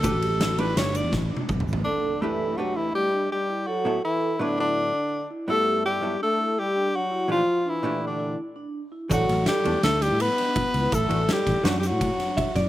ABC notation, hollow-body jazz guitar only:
X:1
M:5/4
L:1/8
Q:1/4=165
K:Ador
V:1 name="Hollow-body jazz guitar"
[A,DGB] z2 [A,DGB]3 z4 | z2 [A,DGB]2 [A,DGB]3 z3 | z [A,,F,B,EA] z2 [A,,F,B,EB]3 z3 | [G,,B,EFA]3 [G,,F,B,EA] z6 |
[_B,,E,A,DG] z2 [B,,E,A,DG]3 z4 | [E,A,DF] z2 [E,A,DA] z6 | z [E,A,DF] z2 [E,A,DF] z3 e d |]